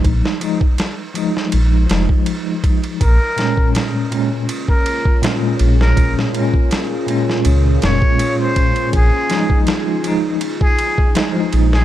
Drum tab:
RD |x-x-x-x-x-x-x-xx|x-x-x-x-x-x-x-x-|x-x-x-x-x-x-x-xx|x-x-x-x-x-x-x-x-|
SD |-o--o--o--o-----|--o-o-------o--o|-o--o--o--o-----|--o-o-------o--o|
BD |o--o-------o--o-|o--o-----o-o----|o--o-------o--o-|o--o-----o-o----|